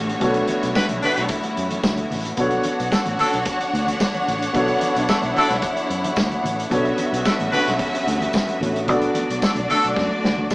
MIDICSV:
0, 0, Header, 1, 7, 480
1, 0, Start_track
1, 0, Key_signature, 2, "minor"
1, 0, Tempo, 541516
1, 191, Time_signature, 4, 2, 24, 8
1, 9349, End_track
2, 0, Start_track
2, 0, Title_t, "String section"
2, 0, Program_c, 0, 48
2, 0, Note_on_c, 0, 57, 73
2, 0, Note_on_c, 0, 66, 73
2, 0, Note_on_c, 0, 73, 90
2, 2072, Note_off_c, 0, 57, 0
2, 2072, Note_off_c, 0, 73, 0
2, 2075, Note_off_c, 0, 66, 0
2, 2103, Note_on_c, 0, 73, 81
2, 2103, Note_on_c, 0, 78, 89
2, 2108, Note_on_c, 0, 62, 86
2, 5913, Note_off_c, 0, 73, 0
2, 5913, Note_off_c, 0, 78, 0
2, 5916, Note_off_c, 0, 62, 0
2, 5955, Note_on_c, 0, 61, 79
2, 5956, Note_on_c, 0, 71, 78
2, 5958, Note_on_c, 0, 76, 84
2, 7838, Note_off_c, 0, 61, 0
2, 7838, Note_off_c, 0, 71, 0
2, 7839, Note_off_c, 0, 76, 0
2, 7868, Note_on_c, 0, 66, 75
2, 7870, Note_on_c, 0, 57, 71
2, 7872, Note_on_c, 0, 74, 86
2, 9349, Note_off_c, 0, 57, 0
2, 9349, Note_off_c, 0, 66, 0
2, 9349, Note_off_c, 0, 74, 0
2, 9349, End_track
3, 0, Start_track
3, 0, Title_t, "Grand piano"
3, 0, Program_c, 1, 0
3, 0, Control_c, 1, 64, 127
3, 0, Note_on_c, 1, 59, 77
3, 0, Note_on_c, 1, 62, 79
3, 0, Note_on_c, 1, 66, 79
3, 0, Note_on_c, 1, 69, 78
3, 0, Note_on_c, 1, 73, 90
3, 148, Note_off_c, 1, 59, 0
3, 152, Note_off_c, 1, 62, 0
3, 155, Note_off_c, 1, 66, 0
3, 159, Note_off_c, 1, 69, 0
3, 162, Note_off_c, 1, 73, 0
3, 178, Note_on_c, 1, 59, 84
3, 183, Note_on_c, 1, 62, 75
3, 188, Note_on_c, 1, 66, 78
3, 196, Note_on_c, 1, 69, 83
3, 200, Note_on_c, 1, 73, 89
3, 2070, Note_off_c, 1, 59, 0
3, 2072, Note_off_c, 1, 62, 0
3, 2075, Note_off_c, 1, 66, 0
3, 2079, Note_off_c, 1, 69, 0
3, 2081, Note_off_c, 1, 73, 0
3, 2101, Note_on_c, 1, 59, 78
3, 2110, Note_on_c, 1, 62, 73
3, 2112, Note_on_c, 1, 66, 76
3, 2120, Note_on_c, 1, 69, 71
3, 2122, Control_c, 1, 64, 0
3, 2129, Note_on_c, 1, 73, 92
3, 2278, Control_c, 1, 64, 127
3, 3992, Note_off_c, 1, 59, 0
3, 3996, Note_off_c, 1, 62, 0
3, 3997, Note_off_c, 1, 66, 0
3, 4002, Note_off_c, 1, 69, 0
3, 4006, Note_off_c, 1, 73, 0
3, 4016, Note_on_c, 1, 59, 85
3, 4020, Note_on_c, 1, 62, 76
3, 4032, Note_on_c, 1, 66, 73
3, 4038, Note_on_c, 1, 69, 75
3, 4045, Note_on_c, 1, 73, 98
3, 5910, Note_off_c, 1, 59, 0
3, 5912, Note_off_c, 1, 62, 0
3, 5917, Note_off_c, 1, 66, 0
3, 5920, Note_off_c, 1, 69, 0
3, 5924, Note_off_c, 1, 73, 0
3, 5937, Note_on_c, 1, 59, 83
3, 5943, Note_on_c, 1, 62, 80
3, 5953, Note_on_c, 1, 66, 69
3, 5954, Note_on_c, 1, 69, 67
3, 5964, Control_c, 1, 64, 0
3, 5964, Note_on_c, 1, 73, 92
3, 6116, Control_c, 1, 64, 127
3, 7590, Note_off_c, 1, 59, 0
3, 7593, Note_off_c, 1, 62, 0
3, 7598, Note_off_c, 1, 66, 0
3, 7599, Note_off_c, 1, 69, 0
3, 7604, Note_off_c, 1, 73, 0
3, 7627, Note_on_c, 1, 59, 53
3, 7630, Note_on_c, 1, 62, 48
3, 7631, Note_on_c, 1, 66, 52
3, 7638, Note_on_c, 1, 73, 63
3, 7641, Note_on_c, 1, 69, 48
3, 7856, Note_off_c, 1, 59, 0
3, 7861, Note_off_c, 1, 62, 0
3, 7869, Note_on_c, 1, 59, 84
3, 7870, Note_off_c, 1, 66, 0
3, 7872, Note_off_c, 1, 69, 0
3, 7875, Note_off_c, 1, 73, 0
3, 7875, Note_on_c, 1, 62, 82
3, 7883, Note_on_c, 1, 66, 75
3, 7885, Control_c, 1, 64, 0
3, 7885, Note_on_c, 1, 69, 75
3, 7889, Note_on_c, 1, 74, 88
3, 8045, Control_c, 1, 64, 127
3, 9349, Note_off_c, 1, 59, 0
3, 9349, Note_off_c, 1, 62, 0
3, 9349, Note_off_c, 1, 66, 0
3, 9349, Note_off_c, 1, 69, 0
3, 9349, Note_off_c, 1, 74, 0
3, 9349, End_track
4, 0, Start_track
4, 0, Title_t, "Horn section"
4, 0, Program_c, 2, 61
4, 674, Note_on_c, 2, 62, 84
4, 674, Note_on_c, 2, 66, 79
4, 676, Note_on_c, 2, 71, 100
4, 754, Note_off_c, 2, 62, 0
4, 754, Note_off_c, 2, 66, 0
4, 756, Note_off_c, 2, 71, 0
4, 908, Note_on_c, 2, 62, 102
4, 910, Note_on_c, 2, 66, 99
4, 910, Note_on_c, 2, 71, 111
4, 1114, Note_off_c, 2, 62, 0
4, 1114, Note_off_c, 2, 66, 0
4, 1115, Note_off_c, 2, 71, 0
4, 2590, Note_on_c, 2, 66, 79
4, 2591, Note_on_c, 2, 62, 75
4, 2592, Note_on_c, 2, 69, 84
4, 2672, Note_off_c, 2, 66, 0
4, 2673, Note_off_c, 2, 62, 0
4, 2673, Note_off_c, 2, 69, 0
4, 2831, Note_on_c, 2, 66, 92
4, 2832, Note_on_c, 2, 62, 103
4, 2833, Note_on_c, 2, 69, 102
4, 2984, Note_off_c, 2, 66, 0
4, 2985, Note_off_c, 2, 62, 0
4, 2986, Note_off_c, 2, 69, 0
4, 4516, Note_on_c, 2, 66, 81
4, 4517, Note_on_c, 2, 62, 82
4, 4518, Note_on_c, 2, 69, 91
4, 4596, Note_off_c, 2, 66, 0
4, 4597, Note_off_c, 2, 62, 0
4, 4597, Note_off_c, 2, 69, 0
4, 4756, Note_on_c, 2, 62, 106
4, 4758, Note_on_c, 2, 66, 101
4, 4758, Note_on_c, 2, 69, 106
4, 4908, Note_off_c, 2, 62, 0
4, 4910, Note_off_c, 2, 66, 0
4, 4910, Note_off_c, 2, 69, 0
4, 6427, Note_on_c, 2, 66, 83
4, 6427, Note_on_c, 2, 69, 91
4, 6428, Note_on_c, 2, 62, 80
4, 6510, Note_off_c, 2, 66, 0
4, 6510, Note_off_c, 2, 69, 0
4, 6511, Note_off_c, 2, 62, 0
4, 6666, Note_on_c, 2, 62, 97
4, 6666, Note_on_c, 2, 71, 106
4, 6667, Note_on_c, 2, 66, 94
4, 6821, Note_off_c, 2, 62, 0
4, 6821, Note_off_c, 2, 71, 0
4, 6822, Note_off_c, 2, 66, 0
4, 8351, Note_on_c, 2, 62, 79
4, 8351, Note_on_c, 2, 69, 94
4, 8352, Note_on_c, 2, 66, 84
4, 8432, Note_off_c, 2, 62, 0
4, 8432, Note_off_c, 2, 69, 0
4, 8433, Note_off_c, 2, 66, 0
4, 8592, Note_on_c, 2, 62, 104
4, 8592, Note_on_c, 2, 69, 116
4, 8593, Note_on_c, 2, 66, 93
4, 8744, Note_off_c, 2, 62, 0
4, 8744, Note_off_c, 2, 69, 0
4, 8745, Note_off_c, 2, 66, 0
4, 9349, End_track
5, 0, Start_track
5, 0, Title_t, "String section"
5, 0, Program_c, 3, 48
5, 0, Note_on_c, 3, 50, 78
5, 0, Note_on_c, 3, 55, 74
5, 0, Note_on_c, 3, 57, 69
5, 0, Note_on_c, 3, 59, 73
5, 0, Note_on_c, 3, 66, 93
5, 173, Note_off_c, 3, 66, 0
5, 194, Note_on_c, 3, 64, 86
5, 2075, Note_off_c, 3, 55, 0
5, 2076, Note_off_c, 3, 50, 0
5, 2083, Note_off_c, 3, 59, 0
5, 2094, Note_off_c, 3, 64, 0
5, 2105, Note_on_c, 3, 59, 74
5, 2106, Note_on_c, 3, 50, 80
5, 2108, Note_on_c, 3, 66, 94
5, 2108, Note_on_c, 3, 73, 75
5, 4012, Note_off_c, 3, 66, 0
5, 4022, Note_on_c, 3, 64, 96
5, 5915, Note_off_c, 3, 50, 0
5, 5916, Note_off_c, 3, 73, 0
5, 5921, Note_off_c, 3, 57, 0
5, 5929, Note_off_c, 3, 64, 0
5, 5941, Note_on_c, 3, 50, 87
5, 5946, Note_on_c, 3, 55, 82
5, 5950, Note_on_c, 3, 66, 92
5, 5951, Note_on_c, 3, 57, 74
5, 7847, Note_off_c, 3, 50, 0
5, 7849, Note_off_c, 3, 55, 0
5, 7851, Note_off_c, 3, 66, 0
5, 7852, Note_off_c, 3, 57, 0
5, 7873, Note_on_c, 3, 50, 80
5, 7877, Note_on_c, 3, 62, 94
5, 7878, Note_on_c, 3, 54, 67
5, 7880, Note_on_c, 3, 57, 74
5, 9349, Note_off_c, 3, 50, 0
5, 9349, Note_off_c, 3, 54, 0
5, 9349, Note_off_c, 3, 57, 0
5, 9349, Note_off_c, 3, 59, 0
5, 9349, Note_off_c, 3, 62, 0
5, 9349, End_track
6, 0, Start_track
6, 0, Title_t, "Fingered electric bass"
6, 0, Program_c, 4, 33
6, 0, Note_on_c, 4, 33, 107
6, 130, Note_off_c, 4, 33, 0
6, 192, Note_on_c, 4, 35, 110
6, 368, Note_off_c, 4, 35, 0
6, 563, Note_on_c, 4, 35, 99
6, 645, Note_off_c, 4, 35, 0
6, 807, Note_on_c, 4, 35, 96
6, 886, Note_off_c, 4, 35, 0
6, 1042, Note_on_c, 4, 35, 104
6, 1124, Note_off_c, 4, 35, 0
6, 1395, Note_on_c, 4, 42, 101
6, 1570, Note_off_c, 4, 42, 0
6, 1628, Note_on_c, 4, 38, 86
6, 1806, Note_off_c, 4, 38, 0
6, 1880, Note_on_c, 4, 33, 90
6, 2053, Note_off_c, 4, 33, 0
6, 2105, Note_on_c, 4, 35, 110
6, 2284, Note_off_c, 4, 35, 0
6, 2481, Note_on_c, 4, 35, 97
6, 2563, Note_off_c, 4, 35, 0
6, 2722, Note_on_c, 4, 33, 103
6, 2804, Note_off_c, 4, 33, 0
6, 2958, Note_on_c, 4, 35, 91
6, 3041, Note_off_c, 4, 35, 0
6, 3309, Note_on_c, 4, 38, 108
6, 3487, Note_off_c, 4, 38, 0
6, 3795, Note_on_c, 4, 33, 101
6, 3971, Note_off_c, 4, 33, 0
6, 4030, Note_on_c, 4, 35, 115
6, 4208, Note_off_c, 4, 35, 0
6, 4399, Note_on_c, 4, 35, 104
6, 4482, Note_off_c, 4, 35, 0
6, 4639, Note_on_c, 4, 35, 112
6, 4722, Note_off_c, 4, 35, 0
6, 4878, Note_on_c, 4, 35, 114
6, 4962, Note_off_c, 4, 35, 0
6, 5229, Note_on_c, 4, 42, 105
6, 5407, Note_off_c, 4, 42, 0
6, 5469, Note_on_c, 4, 38, 97
6, 5647, Note_off_c, 4, 38, 0
6, 5705, Note_on_c, 4, 33, 104
6, 5884, Note_off_c, 4, 33, 0
6, 5953, Note_on_c, 4, 35, 102
6, 6130, Note_off_c, 4, 35, 0
6, 6316, Note_on_c, 4, 35, 108
6, 6401, Note_off_c, 4, 35, 0
6, 6565, Note_on_c, 4, 33, 114
6, 6646, Note_off_c, 4, 33, 0
6, 6805, Note_on_c, 4, 35, 93
6, 6886, Note_off_c, 4, 35, 0
6, 7155, Note_on_c, 4, 38, 97
6, 7331, Note_off_c, 4, 38, 0
6, 7631, Note_on_c, 4, 33, 108
6, 7877, Note_off_c, 4, 33, 0
6, 7877, Note_on_c, 4, 35, 107
6, 8052, Note_off_c, 4, 35, 0
6, 8239, Note_on_c, 4, 35, 86
6, 8322, Note_off_c, 4, 35, 0
6, 8482, Note_on_c, 4, 35, 99
6, 8563, Note_off_c, 4, 35, 0
6, 8726, Note_on_c, 4, 35, 89
6, 8806, Note_off_c, 4, 35, 0
6, 8834, Note_on_c, 4, 42, 101
6, 8926, Note_off_c, 4, 42, 0
6, 9077, Note_on_c, 4, 38, 104
6, 9168, Note_off_c, 4, 38, 0
6, 9201, Note_on_c, 4, 38, 77
6, 9283, Note_off_c, 4, 38, 0
6, 9349, End_track
7, 0, Start_track
7, 0, Title_t, "Drums"
7, 82, Note_on_c, 9, 42, 47
7, 171, Note_off_c, 9, 42, 0
7, 180, Note_on_c, 9, 64, 89
7, 186, Note_on_c, 9, 42, 67
7, 189, Note_on_c, 9, 36, 97
7, 269, Note_off_c, 9, 64, 0
7, 275, Note_off_c, 9, 42, 0
7, 277, Note_off_c, 9, 36, 0
7, 302, Note_on_c, 9, 42, 47
7, 391, Note_off_c, 9, 42, 0
7, 421, Note_on_c, 9, 42, 65
7, 430, Note_on_c, 9, 63, 91
7, 510, Note_off_c, 9, 42, 0
7, 519, Note_off_c, 9, 63, 0
7, 558, Note_on_c, 9, 42, 62
7, 646, Note_off_c, 9, 42, 0
7, 666, Note_on_c, 9, 54, 91
7, 669, Note_on_c, 9, 36, 127
7, 669, Note_on_c, 9, 62, 39
7, 676, Note_on_c, 9, 38, 121
7, 755, Note_off_c, 9, 54, 0
7, 757, Note_off_c, 9, 36, 0
7, 758, Note_off_c, 9, 62, 0
7, 764, Note_off_c, 9, 38, 0
7, 786, Note_on_c, 9, 62, 31
7, 786, Note_on_c, 9, 63, 63
7, 788, Note_on_c, 9, 42, 59
7, 875, Note_off_c, 9, 62, 0
7, 875, Note_off_c, 9, 63, 0
7, 876, Note_off_c, 9, 42, 0
7, 908, Note_on_c, 9, 46, 69
7, 913, Note_on_c, 9, 64, 73
7, 997, Note_off_c, 9, 46, 0
7, 1002, Note_off_c, 9, 64, 0
7, 1041, Note_on_c, 9, 42, 59
7, 1130, Note_off_c, 9, 42, 0
7, 1140, Note_on_c, 9, 42, 87
7, 1145, Note_on_c, 9, 36, 118
7, 1154, Note_on_c, 9, 62, 41
7, 1228, Note_off_c, 9, 42, 0
7, 1234, Note_off_c, 9, 36, 0
7, 1242, Note_off_c, 9, 62, 0
7, 1271, Note_on_c, 9, 42, 50
7, 1282, Note_on_c, 9, 62, 34
7, 1359, Note_off_c, 9, 42, 0
7, 1370, Note_off_c, 9, 62, 0
7, 1393, Note_on_c, 9, 42, 56
7, 1481, Note_off_c, 9, 42, 0
7, 1511, Note_on_c, 9, 42, 56
7, 1514, Note_on_c, 9, 63, 78
7, 1600, Note_off_c, 9, 42, 0
7, 1602, Note_off_c, 9, 63, 0
7, 1626, Note_on_c, 9, 54, 99
7, 1627, Note_on_c, 9, 36, 127
7, 1628, Note_on_c, 9, 38, 123
7, 1715, Note_off_c, 9, 36, 0
7, 1715, Note_off_c, 9, 54, 0
7, 1717, Note_off_c, 9, 38, 0
7, 1749, Note_on_c, 9, 42, 45
7, 1752, Note_on_c, 9, 62, 33
7, 1752, Note_on_c, 9, 63, 56
7, 1838, Note_off_c, 9, 42, 0
7, 1841, Note_off_c, 9, 62, 0
7, 1841, Note_off_c, 9, 63, 0
7, 1863, Note_on_c, 9, 64, 81
7, 1875, Note_on_c, 9, 46, 74
7, 1952, Note_off_c, 9, 64, 0
7, 1964, Note_off_c, 9, 46, 0
7, 1995, Note_on_c, 9, 42, 49
7, 2083, Note_off_c, 9, 42, 0
7, 2101, Note_on_c, 9, 42, 70
7, 2101, Note_on_c, 9, 64, 86
7, 2105, Note_on_c, 9, 36, 90
7, 2189, Note_off_c, 9, 42, 0
7, 2190, Note_off_c, 9, 64, 0
7, 2194, Note_off_c, 9, 36, 0
7, 2221, Note_on_c, 9, 42, 37
7, 2227, Note_on_c, 9, 62, 39
7, 2310, Note_off_c, 9, 42, 0
7, 2315, Note_off_c, 9, 62, 0
7, 2335, Note_on_c, 9, 42, 68
7, 2347, Note_on_c, 9, 63, 96
7, 2424, Note_off_c, 9, 42, 0
7, 2436, Note_off_c, 9, 63, 0
7, 2479, Note_on_c, 9, 42, 56
7, 2568, Note_off_c, 9, 42, 0
7, 2587, Note_on_c, 9, 36, 127
7, 2591, Note_on_c, 9, 54, 94
7, 2593, Note_on_c, 9, 38, 127
7, 2676, Note_off_c, 9, 36, 0
7, 2680, Note_off_c, 9, 54, 0
7, 2681, Note_off_c, 9, 38, 0
7, 2707, Note_on_c, 9, 63, 74
7, 2710, Note_on_c, 9, 42, 54
7, 2796, Note_off_c, 9, 63, 0
7, 2798, Note_off_c, 9, 42, 0
7, 2826, Note_on_c, 9, 64, 74
7, 2827, Note_on_c, 9, 46, 70
7, 2914, Note_off_c, 9, 64, 0
7, 2915, Note_off_c, 9, 46, 0
7, 2958, Note_on_c, 9, 42, 59
7, 3047, Note_off_c, 9, 42, 0
7, 3061, Note_on_c, 9, 42, 88
7, 3065, Note_on_c, 9, 36, 125
7, 3150, Note_off_c, 9, 42, 0
7, 3154, Note_off_c, 9, 36, 0
7, 3197, Note_on_c, 9, 42, 54
7, 3286, Note_off_c, 9, 42, 0
7, 3321, Note_on_c, 9, 42, 55
7, 3409, Note_off_c, 9, 42, 0
7, 3432, Note_on_c, 9, 63, 77
7, 3440, Note_on_c, 9, 42, 54
7, 3520, Note_off_c, 9, 63, 0
7, 3528, Note_off_c, 9, 42, 0
7, 3546, Note_on_c, 9, 54, 115
7, 3547, Note_on_c, 9, 36, 127
7, 3553, Note_on_c, 9, 38, 127
7, 3635, Note_off_c, 9, 54, 0
7, 3636, Note_off_c, 9, 36, 0
7, 3642, Note_off_c, 9, 38, 0
7, 3673, Note_on_c, 9, 42, 44
7, 3675, Note_on_c, 9, 62, 37
7, 3675, Note_on_c, 9, 63, 62
7, 3762, Note_off_c, 9, 42, 0
7, 3764, Note_off_c, 9, 62, 0
7, 3764, Note_off_c, 9, 63, 0
7, 3790, Note_on_c, 9, 64, 79
7, 3798, Note_on_c, 9, 42, 72
7, 3878, Note_off_c, 9, 64, 0
7, 3887, Note_off_c, 9, 42, 0
7, 3921, Note_on_c, 9, 42, 53
7, 4009, Note_off_c, 9, 42, 0
7, 4021, Note_on_c, 9, 64, 88
7, 4028, Note_on_c, 9, 42, 71
7, 4029, Note_on_c, 9, 36, 105
7, 4110, Note_off_c, 9, 64, 0
7, 4117, Note_off_c, 9, 42, 0
7, 4118, Note_off_c, 9, 36, 0
7, 4146, Note_on_c, 9, 42, 40
7, 4151, Note_on_c, 9, 62, 39
7, 4235, Note_off_c, 9, 42, 0
7, 4239, Note_off_c, 9, 62, 0
7, 4264, Note_on_c, 9, 42, 69
7, 4275, Note_on_c, 9, 63, 99
7, 4352, Note_off_c, 9, 42, 0
7, 4364, Note_off_c, 9, 63, 0
7, 4400, Note_on_c, 9, 42, 57
7, 4489, Note_off_c, 9, 42, 0
7, 4508, Note_on_c, 9, 54, 92
7, 4510, Note_on_c, 9, 36, 127
7, 4516, Note_on_c, 9, 38, 127
7, 4596, Note_off_c, 9, 54, 0
7, 4599, Note_off_c, 9, 36, 0
7, 4604, Note_off_c, 9, 38, 0
7, 4627, Note_on_c, 9, 62, 30
7, 4627, Note_on_c, 9, 63, 68
7, 4638, Note_on_c, 9, 42, 53
7, 4715, Note_off_c, 9, 62, 0
7, 4715, Note_off_c, 9, 63, 0
7, 4726, Note_off_c, 9, 42, 0
7, 4747, Note_on_c, 9, 64, 78
7, 4755, Note_on_c, 9, 46, 67
7, 4835, Note_off_c, 9, 64, 0
7, 4844, Note_off_c, 9, 46, 0
7, 4879, Note_on_c, 9, 38, 40
7, 4880, Note_on_c, 9, 42, 58
7, 4968, Note_off_c, 9, 38, 0
7, 4968, Note_off_c, 9, 42, 0
7, 4982, Note_on_c, 9, 42, 81
7, 4985, Note_on_c, 9, 36, 110
7, 4992, Note_on_c, 9, 62, 42
7, 5070, Note_off_c, 9, 42, 0
7, 5074, Note_off_c, 9, 36, 0
7, 5080, Note_off_c, 9, 62, 0
7, 5113, Note_on_c, 9, 42, 51
7, 5201, Note_off_c, 9, 42, 0
7, 5234, Note_on_c, 9, 42, 59
7, 5322, Note_off_c, 9, 42, 0
7, 5356, Note_on_c, 9, 42, 61
7, 5360, Note_on_c, 9, 63, 82
7, 5444, Note_off_c, 9, 42, 0
7, 5448, Note_off_c, 9, 63, 0
7, 5462, Note_on_c, 9, 54, 95
7, 5468, Note_on_c, 9, 36, 127
7, 5475, Note_on_c, 9, 38, 120
7, 5550, Note_off_c, 9, 54, 0
7, 5556, Note_off_c, 9, 36, 0
7, 5564, Note_off_c, 9, 38, 0
7, 5598, Note_on_c, 9, 42, 42
7, 5598, Note_on_c, 9, 63, 58
7, 5686, Note_off_c, 9, 42, 0
7, 5687, Note_off_c, 9, 63, 0
7, 5710, Note_on_c, 9, 64, 83
7, 5722, Note_on_c, 9, 42, 67
7, 5799, Note_off_c, 9, 64, 0
7, 5811, Note_off_c, 9, 42, 0
7, 5847, Note_on_c, 9, 42, 55
7, 5935, Note_off_c, 9, 42, 0
7, 5946, Note_on_c, 9, 62, 39
7, 5946, Note_on_c, 9, 64, 96
7, 5951, Note_on_c, 9, 36, 106
7, 5954, Note_on_c, 9, 42, 76
7, 6035, Note_off_c, 9, 62, 0
7, 6035, Note_off_c, 9, 64, 0
7, 6039, Note_off_c, 9, 36, 0
7, 6042, Note_off_c, 9, 42, 0
7, 6073, Note_on_c, 9, 42, 37
7, 6161, Note_off_c, 9, 42, 0
7, 6186, Note_on_c, 9, 42, 67
7, 6192, Note_on_c, 9, 63, 86
7, 6274, Note_off_c, 9, 42, 0
7, 6280, Note_off_c, 9, 63, 0
7, 6326, Note_on_c, 9, 42, 61
7, 6415, Note_off_c, 9, 42, 0
7, 6428, Note_on_c, 9, 54, 99
7, 6431, Note_on_c, 9, 36, 127
7, 6441, Note_on_c, 9, 38, 127
7, 6517, Note_off_c, 9, 54, 0
7, 6520, Note_off_c, 9, 36, 0
7, 6529, Note_off_c, 9, 38, 0
7, 6551, Note_on_c, 9, 63, 65
7, 6559, Note_on_c, 9, 42, 59
7, 6639, Note_off_c, 9, 63, 0
7, 6648, Note_off_c, 9, 42, 0
7, 6668, Note_on_c, 9, 64, 84
7, 6677, Note_on_c, 9, 46, 71
7, 6756, Note_off_c, 9, 64, 0
7, 6766, Note_off_c, 9, 46, 0
7, 6805, Note_on_c, 9, 38, 38
7, 6805, Note_on_c, 9, 42, 56
7, 6893, Note_off_c, 9, 38, 0
7, 6894, Note_off_c, 9, 42, 0
7, 6908, Note_on_c, 9, 36, 116
7, 6909, Note_on_c, 9, 42, 76
7, 6911, Note_on_c, 9, 62, 40
7, 6996, Note_off_c, 9, 36, 0
7, 6998, Note_off_c, 9, 42, 0
7, 6999, Note_off_c, 9, 62, 0
7, 7045, Note_on_c, 9, 42, 55
7, 7134, Note_off_c, 9, 42, 0
7, 7160, Note_on_c, 9, 42, 67
7, 7249, Note_off_c, 9, 42, 0
7, 7269, Note_on_c, 9, 63, 83
7, 7285, Note_on_c, 9, 42, 51
7, 7357, Note_off_c, 9, 63, 0
7, 7373, Note_off_c, 9, 42, 0
7, 7383, Note_on_c, 9, 62, 36
7, 7385, Note_on_c, 9, 54, 115
7, 7392, Note_on_c, 9, 36, 122
7, 7403, Note_on_c, 9, 38, 127
7, 7471, Note_off_c, 9, 62, 0
7, 7474, Note_off_c, 9, 54, 0
7, 7481, Note_off_c, 9, 36, 0
7, 7492, Note_off_c, 9, 38, 0
7, 7511, Note_on_c, 9, 62, 36
7, 7511, Note_on_c, 9, 63, 53
7, 7522, Note_on_c, 9, 42, 50
7, 7600, Note_off_c, 9, 62, 0
7, 7600, Note_off_c, 9, 63, 0
7, 7610, Note_off_c, 9, 42, 0
7, 7624, Note_on_c, 9, 64, 78
7, 7647, Note_on_c, 9, 42, 67
7, 7713, Note_off_c, 9, 64, 0
7, 7736, Note_off_c, 9, 42, 0
7, 7765, Note_on_c, 9, 42, 49
7, 7854, Note_off_c, 9, 42, 0
7, 7861, Note_on_c, 9, 62, 44
7, 7861, Note_on_c, 9, 64, 93
7, 7871, Note_on_c, 9, 42, 75
7, 7872, Note_on_c, 9, 36, 96
7, 7950, Note_off_c, 9, 62, 0
7, 7950, Note_off_c, 9, 64, 0
7, 7960, Note_off_c, 9, 42, 0
7, 7961, Note_off_c, 9, 36, 0
7, 7983, Note_on_c, 9, 62, 40
7, 7991, Note_on_c, 9, 42, 46
7, 8072, Note_off_c, 9, 62, 0
7, 8080, Note_off_c, 9, 42, 0
7, 8106, Note_on_c, 9, 63, 91
7, 8110, Note_on_c, 9, 42, 73
7, 8194, Note_off_c, 9, 63, 0
7, 8198, Note_off_c, 9, 42, 0
7, 8247, Note_on_c, 9, 42, 59
7, 8336, Note_off_c, 9, 42, 0
7, 8350, Note_on_c, 9, 54, 96
7, 8352, Note_on_c, 9, 62, 40
7, 8353, Note_on_c, 9, 36, 120
7, 8362, Note_on_c, 9, 38, 127
7, 8439, Note_off_c, 9, 54, 0
7, 8441, Note_off_c, 9, 62, 0
7, 8442, Note_off_c, 9, 36, 0
7, 8450, Note_off_c, 9, 38, 0
7, 8467, Note_on_c, 9, 62, 31
7, 8467, Note_on_c, 9, 63, 63
7, 8473, Note_on_c, 9, 42, 52
7, 8556, Note_off_c, 9, 62, 0
7, 8556, Note_off_c, 9, 63, 0
7, 8562, Note_off_c, 9, 42, 0
7, 8596, Note_on_c, 9, 46, 66
7, 8596, Note_on_c, 9, 64, 85
7, 8684, Note_off_c, 9, 46, 0
7, 8684, Note_off_c, 9, 64, 0
7, 8726, Note_on_c, 9, 42, 56
7, 8815, Note_off_c, 9, 42, 0
7, 8832, Note_on_c, 9, 36, 126
7, 8837, Note_on_c, 9, 62, 39
7, 8844, Note_on_c, 9, 38, 60
7, 8921, Note_off_c, 9, 36, 0
7, 8925, Note_off_c, 9, 62, 0
7, 8933, Note_off_c, 9, 38, 0
7, 9082, Note_on_c, 9, 38, 80
7, 9171, Note_off_c, 9, 38, 0
7, 9204, Note_on_c, 9, 63, 80
7, 9292, Note_off_c, 9, 63, 0
7, 9310, Note_on_c, 9, 54, 95
7, 9314, Note_on_c, 9, 36, 127
7, 9319, Note_on_c, 9, 38, 105
7, 9349, Note_off_c, 9, 36, 0
7, 9349, Note_off_c, 9, 38, 0
7, 9349, Note_off_c, 9, 54, 0
7, 9349, End_track
0, 0, End_of_file